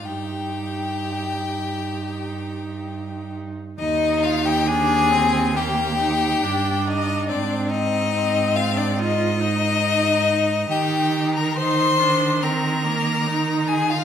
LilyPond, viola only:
\new Staff \with { instrumentName = "Viola" } { \time 4/4 \key ees \major \tempo 4 = 69 ees'1 | ees'4 d'8 c'8 bes8 ees'8 d'4 | c'4 c'4 f'8 ees'4. | ees'4 ees'8 d'8 c'8 bes8 ees'4 | }